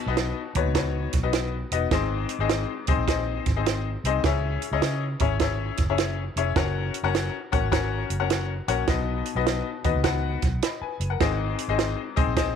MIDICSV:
0, 0, Header, 1, 5, 480
1, 0, Start_track
1, 0, Key_signature, 5, "major"
1, 0, Tempo, 580833
1, 1582, Time_signature, 4, 2, 24, 8
1, 10375, End_track
2, 0, Start_track
2, 0, Title_t, "Upright piano"
2, 0, Program_c, 0, 0
2, 0, Note_on_c, 0, 47, 73
2, 61, Note_on_c, 0, 59, 89
2, 62, Note_on_c, 0, 63, 79
2, 65, Note_on_c, 0, 71, 77
2, 67, Note_on_c, 0, 66, 78
2, 68, Note_on_c, 0, 75, 95
2, 314, Note_off_c, 0, 59, 0
2, 315, Note_off_c, 0, 63, 0
2, 316, Note_off_c, 0, 71, 0
2, 317, Note_off_c, 0, 66, 0
2, 317, Note_off_c, 0, 75, 0
2, 426, Note_off_c, 0, 47, 0
2, 463, Note_on_c, 0, 59, 87
2, 466, Note_on_c, 0, 63, 78
2, 466, Note_on_c, 0, 71, 80
2, 467, Note_on_c, 0, 66, 77
2, 468, Note_on_c, 0, 73, 92
2, 574, Note_off_c, 0, 59, 0
2, 575, Note_off_c, 0, 63, 0
2, 576, Note_off_c, 0, 66, 0
2, 576, Note_off_c, 0, 71, 0
2, 576, Note_off_c, 0, 73, 0
2, 615, Note_on_c, 0, 63, 81
2, 619, Note_on_c, 0, 59, 83
2, 619, Note_on_c, 0, 71, 76
2, 621, Note_on_c, 0, 66, 80
2, 623, Note_on_c, 0, 73, 89
2, 942, Note_off_c, 0, 63, 0
2, 944, Note_off_c, 0, 59, 0
2, 944, Note_off_c, 0, 71, 0
2, 945, Note_off_c, 0, 66, 0
2, 946, Note_off_c, 0, 73, 0
2, 1018, Note_on_c, 0, 59, 83
2, 1019, Note_on_c, 0, 63, 73
2, 1020, Note_on_c, 0, 71, 72
2, 1021, Note_on_c, 0, 66, 71
2, 1022, Note_on_c, 0, 75, 87
2, 1273, Note_off_c, 0, 59, 0
2, 1273, Note_off_c, 0, 63, 0
2, 1274, Note_off_c, 0, 66, 0
2, 1274, Note_off_c, 0, 71, 0
2, 1275, Note_off_c, 0, 75, 0
2, 1422, Note_on_c, 0, 59, 91
2, 1422, Note_on_c, 0, 63, 76
2, 1423, Note_on_c, 0, 71, 79
2, 1424, Note_on_c, 0, 66, 79
2, 1424, Note_on_c, 0, 75, 94
2, 1534, Note_off_c, 0, 59, 0
2, 1534, Note_off_c, 0, 63, 0
2, 1535, Note_off_c, 0, 66, 0
2, 1535, Note_off_c, 0, 71, 0
2, 1535, Note_off_c, 0, 75, 0
2, 1584, Note_on_c, 0, 63, 81
2, 1586, Note_on_c, 0, 60, 89
2, 1589, Note_on_c, 0, 68, 80
2, 1590, Note_on_c, 0, 75, 96
2, 1592, Note_on_c, 0, 72, 77
2, 1593, Note_on_c, 0, 44, 77
2, 1907, Note_off_c, 0, 63, 0
2, 1908, Note_off_c, 0, 60, 0
2, 1909, Note_off_c, 0, 68, 0
2, 1910, Note_off_c, 0, 75, 0
2, 1911, Note_off_c, 0, 72, 0
2, 1983, Note_on_c, 0, 60, 86
2, 1985, Note_on_c, 0, 63, 79
2, 1985, Note_on_c, 0, 68, 78
2, 1988, Note_on_c, 0, 72, 79
2, 1989, Note_on_c, 0, 75, 90
2, 2236, Note_off_c, 0, 60, 0
2, 2237, Note_off_c, 0, 63, 0
2, 2237, Note_off_c, 0, 68, 0
2, 2238, Note_off_c, 0, 72, 0
2, 2239, Note_off_c, 0, 75, 0
2, 2351, Note_off_c, 0, 44, 0
2, 2380, Note_on_c, 0, 60, 89
2, 2380, Note_on_c, 0, 63, 81
2, 2381, Note_on_c, 0, 68, 82
2, 2385, Note_on_c, 0, 72, 80
2, 2385, Note_on_c, 0, 75, 97
2, 2493, Note_off_c, 0, 60, 0
2, 2493, Note_off_c, 0, 63, 0
2, 2494, Note_off_c, 0, 68, 0
2, 2496, Note_off_c, 0, 72, 0
2, 2496, Note_off_c, 0, 75, 0
2, 2538, Note_on_c, 0, 60, 83
2, 2541, Note_on_c, 0, 68, 78
2, 2542, Note_on_c, 0, 63, 77
2, 2544, Note_on_c, 0, 72, 79
2, 2544, Note_on_c, 0, 75, 95
2, 2864, Note_off_c, 0, 60, 0
2, 2866, Note_off_c, 0, 63, 0
2, 2866, Note_off_c, 0, 68, 0
2, 2867, Note_off_c, 0, 72, 0
2, 2867, Note_off_c, 0, 75, 0
2, 2945, Note_on_c, 0, 63, 72
2, 2945, Note_on_c, 0, 68, 75
2, 2946, Note_on_c, 0, 75, 86
2, 2948, Note_on_c, 0, 60, 80
2, 2953, Note_on_c, 0, 72, 70
2, 3197, Note_off_c, 0, 63, 0
2, 3197, Note_off_c, 0, 68, 0
2, 3198, Note_off_c, 0, 60, 0
2, 3198, Note_off_c, 0, 75, 0
2, 3201, Note_off_c, 0, 72, 0
2, 3348, Note_on_c, 0, 60, 85
2, 3353, Note_on_c, 0, 72, 80
2, 3355, Note_on_c, 0, 68, 75
2, 3356, Note_on_c, 0, 63, 77
2, 3359, Note_on_c, 0, 75, 99
2, 3457, Note_off_c, 0, 60, 0
2, 3460, Note_off_c, 0, 72, 0
2, 3461, Note_off_c, 0, 63, 0
2, 3461, Note_off_c, 0, 68, 0
2, 3463, Note_off_c, 0, 75, 0
2, 3511, Note_on_c, 0, 61, 92
2, 3516, Note_on_c, 0, 68, 80
2, 3517, Note_on_c, 0, 49, 78
2, 3517, Note_on_c, 0, 64, 79
2, 3519, Note_on_c, 0, 73, 80
2, 3519, Note_on_c, 0, 76, 98
2, 3831, Note_off_c, 0, 61, 0
2, 3833, Note_off_c, 0, 68, 0
2, 3834, Note_off_c, 0, 64, 0
2, 3835, Note_off_c, 0, 73, 0
2, 3835, Note_off_c, 0, 76, 0
2, 3904, Note_on_c, 0, 64, 79
2, 3905, Note_on_c, 0, 68, 79
2, 3907, Note_on_c, 0, 61, 83
2, 3907, Note_on_c, 0, 75, 101
2, 3910, Note_on_c, 0, 73, 81
2, 4157, Note_off_c, 0, 64, 0
2, 4157, Note_off_c, 0, 68, 0
2, 4158, Note_off_c, 0, 61, 0
2, 4158, Note_off_c, 0, 75, 0
2, 4160, Note_off_c, 0, 73, 0
2, 4274, Note_off_c, 0, 49, 0
2, 4304, Note_on_c, 0, 61, 89
2, 4304, Note_on_c, 0, 64, 74
2, 4306, Note_on_c, 0, 73, 83
2, 4307, Note_on_c, 0, 68, 77
2, 4308, Note_on_c, 0, 76, 90
2, 4416, Note_off_c, 0, 61, 0
2, 4416, Note_off_c, 0, 64, 0
2, 4417, Note_off_c, 0, 68, 0
2, 4417, Note_off_c, 0, 73, 0
2, 4418, Note_off_c, 0, 76, 0
2, 4467, Note_on_c, 0, 64, 81
2, 4468, Note_on_c, 0, 61, 84
2, 4472, Note_on_c, 0, 68, 82
2, 4472, Note_on_c, 0, 76, 98
2, 4475, Note_on_c, 0, 73, 79
2, 4789, Note_off_c, 0, 64, 0
2, 4790, Note_off_c, 0, 61, 0
2, 4791, Note_off_c, 0, 76, 0
2, 4792, Note_off_c, 0, 68, 0
2, 4793, Note_off_c, 0, 73, 0
2, 4872, Note_on_c, 0, 61, 78
2, 4873, Note_on_c, 0, 64, 76
2, 4873, Note_on_c, 0, 68, 77
2, 4875, Note_on_c, 0, 73, 71
2, 4875, Note_on_c, 0, 76, 85
2, 5121, Note_off_c, 0, 61, 0
2, 5121, Note_off_c, 0, 64, 0
2, 5121, Note_off_c, 0, 68, 0
2, 5122, Note_off_c, 0, 73, 0
2, 5122, Note_off_c, 0, 76, 0
2, 5266, Note_on_c, 0, 61, 88
2, 5268, Note_on_c, 0, 64, 76
2, 5269, Note_on_c, 0, 68, 76
2, 5270, Note_on_c, 0, 73, 83
2, 5270, Note_on_c, 0, 76, 96
2, 5377, Note_off_c, 0, 61, 0
2, 5378, Note_off_c, 0, 64, 0
2, 5378, Note_off_c, 0, 68, 0
2, 5379, Note_off_c, 0, 73, 0
2, 5379, Note_off_c, 0, 76, 0
2, 5423, Note_on_c, 0, 61, 90
2, 5423, Note_on_c, 0, 70, 81
2, 5424, Note_on_c, 0, 66, 74
2, 5425, Note_on_c, 0, 73, 77
2, 5426, Note_on_c, 0, 78, 97
2, 5747, Note_off_c, 0, 61, 0
2, 5747, Note_off_c, 0, 66, 0
2, 5747, Note_off_c, 0, 70, 0
2, 5748, Note_off_c, 0, 73, 0
2, 5749, Note_off_c, 0, 78, 0
2, 5814, Note_on_c, 0, 61, 88
2, 5814, Note_on_c, 0, 66, 82
2, 5814, Note_on_c, 0, 70, 78
2, 5817, Note_on_c, 0, 73, 79
2, 5819, Note_on_c, 0, 78, 96
2, 6072, Note_off_c, 0, 61, 0
2, 6072, Note_off_c, 0, 66, 0
2, 6072, Note_off_c, 0, 70, 0
2, 6074, Note_off_c, 0, 73, 0
2, 6074, Note_off_c, 0, 78, 0
2, 6213, Note_on_c, 0, 61, 85
2, 6217, Note_on_c, 0, 70, 77
2, 6217, Note_on_c, 0, 73, 80
2, 6217, Note_on_c, 0, 78, 96
2, 6219, Note_on_c, 0, 66, 75
2, 6330, Note_off_c, 0, 61, 0
2, 6332, Note_off_c, 0, 70, 0
2, 6332, Note_off_c, 0, 78, 0
2, 6333, Note_off_c, 0, 66, 0
2, 6333, Note_off_c, 0, 73, 0
2, 6376, Note_on_c, 0, 61, 89
2, 6376, Note_on_c, 0, 66, 79
2, 6379, Note_on_c, 0, 70, 80
2, 6379, Note_on_c, 0, 73, 81
2, 6381, Note_on_c, 0, 78, 93
2, 6704, Note_off_c, 0, 61, 0
2, 6704, Note_off_c, 0, 66, 0
2, 6705, Note_off_c, 0, 70, 0
2, 6705, Note_off_c, 0, 73, 0
2, 6706, Note_off_c, 0, 78, 0
2, 6774, Note_on_c, 0, 61, 74
2, 6774, Note_on_c, 0, 66, 75
2, 6775, Note_on_c, 0, 78, 86
2, 6776, Note_on_c, 0, 70, 67
2, 6776, Note_on_c, 0, 73, 70
2, 7032, Note_off_c, 0, 61, 0
2, 7032, Note_off_c, 0, 66, 0
2, 7032, Note_off_c, 0, 78, 0
2, 7033, Note_off_c, 0, 70, 0
2, 7033, Note_off_c, 0, 73, 0
2, 7173, Note_on_c, 0, 61, 81
2, 7174, Note_on_c, 0, 66, 77
2, 7174, Note_on_c, 0, 70, 79
2, 7176, Note_on_c, 0, 73, 77
2, 7176, Note_on_c, 0, 78, 91
2, 7290, Note_off_c, 0, 61, 0
2, 7291, Note_off_c, 0, 66, 0
2, 7291, Note_off_c, 0, 70, 0
2, 7292, Note_off_c, 0, 73, 0
2, 7292, Note_off_c, 0, 78, 0
2, 7337, Note_on_c, 0, 59, 86
2, 7342, Note_on_c, 0, 47, 69
2, 7342, Note_on_c, 0, 71, 77
2, 7343, Note_on_c, 0, 63, 74
2, 7343, Note_on_c, 0, 66, 73
2, 7347, Note_on_c, 0, 75, 97
2, 7664, Note_off_c, 0, 59, 0
2, 7667, Note_off_c, 0, 63, 0
2, 7667, Note_off_c, 0, 66, 0
2, 7667, Note_off_c, 0, 71, 0
2, 7669, Note_off_c, 0, 75, 0
2, 7736, Note_on_c, 0, 71, 80
2, 7737, Note_on_c, 0, 59, 84
2, 7737, Note_on_c, 0, 63, 76
2, 7737, Note_on_c, 0, 66, 79
2, 7738, Note_on_c, 0, 75, 99
2, 7993, Note_off_c, 0, 59, 0
2, 7993, Note_off_c, 0, 66, 0
2, 7993, Note_off_c, 0, 71, 0
2, 7994, Note_off_c, 0, 63, 0
2, 7994, Note_off_c, 0, 75, 0
2, 8107, Note_off_c, 0, 47, 0
2, 8134, Note_on_c, 0, 59, 84
2, 8135, Note_on_c, 0, 63, 82
2, 8136, Note_on_c, 0, 66, 79
2, 8137, Note_on_c, 0, 75, 91
2, 8139, Note_on_c, 0, 71, 79
2, 8251, Note_off_c, 0, 59, 0
2, 8251, Note_off_c, 0, 63, 0
2, 8252, Note_off_c, 0, 66, 0
2, 8252, Note_off_c, 0, 75, 0
2, 8253, Note_off_c, 0, 71, 0
2, 8293, Note_on_c, 0, 66, 77
2, 8295, Note_on_c, 0, 59, 87
2, 8296, Note_on_c, 0, 63, 80
2, 8297, Note_on_c, 0, 78, 95
2, 8299, Note_on_c, 0, 71, 80
2, 8617, Note_off_c, 0, 78, 0
2, 8618, Note_off_c, 0, 71, 0
2, 8622, Note_off_c, 0, 66, 0
2, 8623, Note_off_c, 0, 59, 0
2, 8624, Note_off_c, 0, 63, 0
2, 8784, Note_on_c, 0, 83, 66
2, 8786, Note_on_c, 0, 75, 55
2, 8934, Note_off_c, 0, 83, 0
2, 8936, Note_off_c, 0, 75, 0
2, 8938, Note_on_c, 0, 80, 69
2, 8941, Note_on_c, 0, 71, 62
2, 9168, Note_off_c, 0, 80, 0
2, 9170, Note_off_c, 0, 71, 0
2, 9173, Note_on_c, 0, 78, 64
2, 9181, Note_on_c, 0, 70, 59
2, 9259, Note_on_c, 0, 60, 82
2, 9261, Note_on_c, 0, 68, 81
2, 9264, Note_on_c, 0, 44, 79
2, 9264, Note_on_c, 0, 63, 76
2, 9265, Note_on_c, 0, 75, 95
2, 9266, Note_on_c, 0, 72, 75
2, 9405, Note_off_c, 0, 78, 0
2, 9410, Note_off_c, 0, 70, 0
2, 9586, Note_off_c, 0, 60, 0
2, 9587, Note_off_c, 0, 68, 0
2, 9588, Note_off_c, 0, 63, 0
2, 9588, Note_off_c, 0, 75, 0
2, 9589, Note_off_c, 0, 72, 0
2, 9660, Note_on_c, 0, 60, 82
2, 9661, Note_on_c, 0, 63, 77
2, 9662, Note_on_c, 0, 75, 95
2, 9664, Note_on_c, 0, 68, 76
2, 9666, Note_on_c, 0, 72, 78
2, 9915, Note_off_c, 0, 60, 0
2, 9916, Note_off_c, 0, 63, 0
2, 9916, Note_off_c, 0, 75, 0
2, 9917, Note_off_c, 0, 68, 0
2, 9918, Note_off_c, 0, 72, 0
2, 10028, Note_off_c, 0, 44, 0
2, 10051, Note_on_c, 0, 60, 90
2, 10051, Note_on_c, 0, 72, 79
2, 10052, Note_on_c, 0, 63, 78
2, 10053, Note_on_c, 0, 68, 80
2, 10054, Note_on_c, 0, 75, 102
2, 10169, Note_off_c, 0, 60, 0
2, 10170, Note_off_c, 0, 63, 0
2, 10170, Note_off_c, 0, 68, 0
2, 10170, Note_off_c, 0, 72, 0
2, 10171, Note_off_c, 0, 75, 0
2, 10218, Note_on_c, 0, 60, 92
2, 10218, Note_on_c, 0, 63, 76
2, 10219, Note_on_c, 0, 72, 83
2, 10220, Note_on_c, 0, 75, 100
2, 10222, Note_on_c, 0, 68, 78
2, 10375, Note_off_c, 0, 60, 0
2, 10375, Note_off_c, 0, 63, 0
2, 10375, Note_off_c, 0, 68, 0
2, 10375, Note_off_c, 0, 72, 0
2, 10375, Note_off_c, 0, 75, 0
2, 10375, End_track
3, 0, Start_track
3, 0, Title_t, "Fingered electric bass"
3, 0, Program_c, 1, 33
3, 53, Note_on_c, 1, 35, 102
3, 259, Note_off_c, 1, 35, 0
3, 456, Note_on_c, 1, 39, 103
3, 526, Note_off_c, 1, 39, 0
3, 540, Note_on_c, 1, 37, 91
3, 878, Note_off_c, 1, 37, 0
3, 937, Note_on_c, 1, 35, 89
3, 1346, Note_off_c, 1, 35, 0
3, 1416, Note_on_c, 1, 28, 87
3, 1556, Note_off_c, 1, 28, 0
3, 1580, Note_on_c, 1, 32, 99
3, 1850, Note_off_c, 1, 32, 0
3, 1973, Note_on_c, 1, 32, 106
3, 2180, Note_off_c, 1, 32, 0
3, 2380, Note_on_c, 1, 36, 87
3, 2449, Note_off_c, 1, 36, 0
3, 2455, Note_on_c, 1, 34, 97
3, 2796, Note_off_c, 1, 34, 0
3, 2860, Note_on_c, 1, 32, 90
3, 3268, Note_off_c, 1, 32, 0
3, 3338, Note_on_c, 1, 36, 89
3, 3478, Note_off_c, 1, 36, 0
3, 3500, Note_on_c, 1, 37, 107
3, 3770, Note_off_c, 1, 37, 0
3, 3897, Note_on_c, 1, 37, 99
3, 3968, Note_off_c, 1, 37, 0
3, 3979, Note_on_c, 1, 49, 99
3, 4250, Note_off_c, 1, 49, 0
3, 4298, Note_on_c, 1, 32, 91
3, 4707, Note_off_c, 1, 32, 0
3, 4776, Note_on_c, 1, 30, 93
3, 5186, Note_off_c, 1, 30, 0
3, 5257, Note_on_c, 1, 29, 90
3, 5397, Note_off_c, 1, 29, 0
3, 5422, Note_on_c, 1, 30, 115
3, 5692, Note_off_c, 1, 30, 0
3, 5812, Note_on_c, 1, 30, 100
3, 6020, Note_off_c, 1, 30, 0
3, 6222, Note_on_c, 1, 34, 91
3, 6287, Note_off_c, 1, 34, 0
3, 6292, Note_on_c, 1, 32, 99
3, 6635, Note_off_c, 1, 32, 0
3, 6693, Note_on_c, 1, 30, 83
3, 7104, Note_off_c, 1, 30, 0
3, 7174, Note_on_c, 1, 34, 87
3, 7315, Note_off_c, 1, 34, 0
3, 7337, Note_on_c, 1, 35, 107
3, 7609, Note_off_c, 1, 35, 0
3, 7730, Note_on_c, 1, 35, 106
3, 7939, Note_off_c, 1, 35, 0
3, 8137, Note_on_c, 1, 39, 91
3, 8208, Note_off_c, 1, 39, 0
3, 8219, Note_on_c, 1, 37, 89
3, 8559, Note_off_c, 1, 37, 0
3, 8615, Note_on_c, 1, 35, 94
3, 8756, Note_off_c, 1, 35, 0
3, 9089, Note_on_c, 1, 30, 92
3, 9233, Note_off_c, 1, 30, 0
3, 9256, Note_on_c, 1, 32, 103
3, 9529, Note_off_c, 1, 32, 0
3, 9653, Note_on_c, 1, 32, 109
3, 9861, Note_off_c, 1, 32, 0
3, 10061, Note_on_c, 1, 36, 86
3, 10130, Note_off_c, 1, 36, 0
3, 10141, Note_on_c, 1, 34, 100
3, 10375, Note_off_c, 1, 34, 0
3, 10375, End_track
4, 0, Start_track
4, 0, Title_t, "Muted fingered electric bass strokes"
4, 8935, Note_on_c, 9, 29, 48
4, 9018, Note_off_c, 9, 29, 0
4, 10375, End_track
5, 0, Start_track
5, 0, Title_t, "Drums"
5, 138, Note_on_c, 9, 42, 90
5, 140, Note_on_c, 9, 38, 110
5, 221, Note_off_c, 9, 42, 0
5, 222, Note_off_c, 9, 38, 0
5, 453, Note_on_c, 9, 42, 68
5, 459, Note_on_c, 9, 36, 97
5, 535, Note_off_c, 9, 42, 0
5, 542, Note_off_c, 9, 36, 0
5, 618, Note_on_c, 9, 36, 93
5, 618, Note_on_c, 9, 42, 97
5, 622, Note_on_c, 9, 38, 115
5, 700, Note_off_c, 9, 42, 0
5, 701, Note_off_c, 9, 36, 0
5, 705, Note_off_c, 9, 38, 0
5, 930, Note_on_c, 9, 42, 67
5, 939, Note_on_c, 9, 36, 89
5, 940, Note_on_c, 9, 38, 36
5, 1013, Note_off_c, 9, 42, 0
5, 1022, Note_off_c, 9, 36, 0
5, 1022, Note_off_c, 9, 38, 0
5, 1097, Note_on_c, 9, 42, 84
5, 1103, Note_on_c, 9, 38, 92
5, 1180, Note_off_c, 9, 42, 0
5, 1186, Note_off_c, 9, 38, 0
5, 1417, Note_on_c, 9, 42, 74
5, 1500, Note_off_c, 9, 42, 0
5, 1579, Note_on_c, 9, 42, 81
5, 1581, Note_on_c, 9, 36, 127
5, 1582, Note_on_c, 9, 38, 127
5, 1662, Note_off_c, 9, 42, 0
5, 1664, Note_off_c, 9, 36, 0
5, 1664, Note_off_c, 9, 38, 0
5, 1890, Note_on_c, 9, 42, 70
5, 1973, Note_off_c, 9, 42, 0
5, 2060, Note_on_c, 9, 42, 91
5, 2062, Note_on_c, 9, 38, 115
5, 2143, Note_off_c, 9, 42, 0
5, 2144, Note_off_c, 9, 38, 0
5, 2371, Note_on_c, 9, 42, 73
5, 2382, Note_on_c, 9, 36, 100
5, 2454, Note_off_c, 9, 42, 0
5, 2464, Note_off_c, 9, 36, 0
5, 2542, Note_on_c, 9, 36, 99
5, 2546, Note_on_c, 9, 42, 98
5, 2550, Note_on_c, 9, 38, 117
5, 2625, Note_off_c, 9, 36, 0
5, 2629, Note_off_c, 9, 42, 0
5, 2633, Note_off_c, 9, 38, 0
5, 2858, Note_on_c, 9, 42, 68
5, 2863, Note_on_c, 9, 36, 93
5, 2867, Note_on_c, 9, 38, 36
5, 2940, Note_off_c, 9, 42, 0
5, 2946, Note_off_c, 9, 36, 0
5, 2950, Note_off_c, 9, 38, 0
5, 3026, Note_on_c, 9, 42, 86
5, 3031, Note_on_c, 9, 38, 94
5, 3108, Note_off_c, 9, 42, 0
5, 3114, Note_off_c, 9, 38, 0
5, 3344, Note_on_c, 9, 42, 74
5, 3427, Note_off_c, 9, 42, 0
5, 3502, Note_on_c, 9, 42, 81
5, 3503, Note_on_c, 9, 36, 127
5, 3504, Note_on_c, 9, 38, 125
5, 3585, Note_off_c, 9, 36, 0
5, 3585, Note_off_c, 9, 42, 0
5, 3587, Note_off_c, 9, 38, 0
5, 3816, Note_on_c, 9, 42, 70
5, 3898, Note_off_c, 9, 42, 0
5, 3982, Note_on_c, 9, 42, 87
5, 3984, Note_on_c, 9, 38, 115
5, 4065, Note_off_c, 9, 42, 0
5, 4067, Note_off_c, 9, 38, 0
5, 4293, Note_on_c, 9, 42, 71
5, 4301, Note_on_c, 9, 36, 95
5, 4375, Note_off_c, 9, 42, 0
5, 4384, Note_off_c, 9, 36, 0
5, 4459, Note_on_c, 9, 42, 96
5, 4460, Note_on_c, 9, 36, 92
5, 4464, Note_on_c, 9, 38, 115
5, 4542, Note_off_c, 9, 42, 0
5, 4543, Note_off_c, 9, 36, 0
5, 4546, Note_off_c, 9, 38, 0
5, 4771, Note_on_c, 9, 42, 66
5, 4780, Note_on_c, 9, 36, 93
5, 4780, Note_on_c, 9, 38, 39
5, 4853, Note_off_c, 9, 42, 0
5, 4863, Note_off_c, 9, 36, 0
5, 4863, Note_off_c, 9, 38, 0
5, 4941, Note_on_c, 9, 42, 79
5, 4947, Note_on_c, 9, 38, 96
5, 5024, Note_off_c, 9, 42, 0
5, 5029, Note_off_c, 9, 38, 0
5, 5261, Note_on_c, 9, 42, 73
5, 5343, Note_off_c, 9, 42, 0
5, 5420, Note_on_c, 9, 42, 83
5, 5421, Note_on_c, 9, 36, 127
5, 5422, Note_on_c, 9, 38, 127
5, 5502, Note_off_c, 9, 42, 0
5, 5504, Note_off_c, 9, 36, 0
5, 5504, Note_off_c, 9, 38, 0
5, 5735, Note_on_c, 9, 42, 73
5, 5817, Note_off_c, 9, 42, 0
5, 5906, Note_on_c, 9, 42, 90
5, 5907, Note_on_c, 9, 38, 112
5, 5988, Note_off_c, 9, 42, 0
5, 5990, Note_off_c, 9, 38, 0
5, 6220, Note_on_c, 9, 42, 70
5, 6223, Note_on_c, 9, 36, 90
5, 6302, Note_off_c, 9, 42, 0
5, 6306, Note_off_c, 9, 36, 0
5, 6381, Note_on_c, 9, 36, 95
5, 6384, Note_on_c, 9, 42, 97
5, 6388, Note_on_c, 9, 38, 124
5, 6464, Note_off_c, 9, 36, 0
5, 6466, Note_off_c, 9, 42, 0
5, 6471, Note_off_c, 9, 38, 0
5, 6694, Note_on_c, 9, 42, 67
5, 6777, Note_off_c, 9, 42, 0
5, 6859, Note_on_c, 9, 42, 88
5, 6864, Note_on_c, 9, 38, 95
5, 6942, Note_off_c, 9, 42, 0
5, 6947, Note_off_c, 9, 38, 0
5, 7174, Note_on_c, 9, 42, 74
5, 7257, Note_off_c, 9, 42, 0
5, 7334, Note_on_c, 9, 42, 76
5, 7336, Note_on_c, 9, 38, 122
5, 7338, Note_on_c, 9, 36, 122
5, 7416, Note_off_c, 9, 42, 0
5, 7418, Note_off_c, 9, 38, 0
5, 7421, Note_off_c, 9, 36, 0
5, 7648, Note_on_c, 9, 42, 70
5, 7730, Note_off_c, 9, 42, 0
5, 7821, Note_on_c, 9, 42, 87
5, 7823, Note_on_c, 9, 38, 120
5, 7904, Note_off_c, 9, 42, 0
5, 7906, Note_off_c, 9, 38, 0
5, 8134, Note_on_c, 9, 42, 72
5, 8139, Note_on_c, 9, 36, 101
5, 8216, Note_off_c, 9, 42, 0
5, 8222, Note_off_c, 9, 36, 0
5, 8294, Note_on_c, 9, 42, 103
5, 8297, Note_on_c, 9, 36, 99
5, 8299, Note_on_c, 9, 38, 127
5, 8377, Note_off_c, 9, 42, 0
5, 8380, Note_off_c, 9, 36, 0
5, 8381, Note_off_c, 9, 38, 0
5, 8612, Note_on_c, 9, 42, 64
5, 8617, Note_on_c, 9, 36, 90
5, 8621, Note_on_c, 9, 38, 36
5, 8694, Note_off_c, 9, 42, 0
5, 8700, Note_off_c, 9, 36, 0
5, 8704, Note_off_c, 9, 38, 0
5, 8779, Note_on_c, 9, 42, 89
5, 8785, Note_on_c, 9, 38, 95
5, 8862, Note_off_c, 9, 42, 0
5, 8867, Note_off_c, 9, 38, 0
5, 9094, Note_on_c, 9, 42, 74
5, 9177, Note_off_c, 9, 42, 0
5, 9259, Note_on_c, 9, 42, 78
5, 9260, Note_on_c, 9, 36, 121
5, 9261, Note_on_c, 9, 38, 123
5, 9342, Note_off_c, 9, 42, 0
5, 9343, Note_off_c, 9, 36, 0
5, 9344, Note_off_c, 9, 38, 0
5, 9573, Note_on_c, 9, 42, 70
5, 9656, Note_off_c, 9, 42, 0
5, 9740, Note_on_c, 9, 42, 88
5, 9742, Note_on_c, 9, 38, 114
5, 9823, Note_off_c, 9, 42, 0
5, 9824, Note_off_c, 9, 38, 0
5, 10055, Note_on_c, 9, 42, 70
5, 10061, Note_on_c, 9, 36, 98
5, 10137, Note_off_c, 9, 42, 0
5, 10143, Note_off_c, 9, 36, 0
5, 10219, Note_on_c, 9, 42, 101
5, 10220, Note_on_c, 9, 36, 95
5, 10224, Note_on_c, 9, 38, 121
5, 10302, Note_off_c, 9, 36, 0
5, 10302, Note_off_c, 9, 42, 0
5, 10306, Note_off_c, 9, 38, 0
5, 10375, End_track
0, 0, End_of_file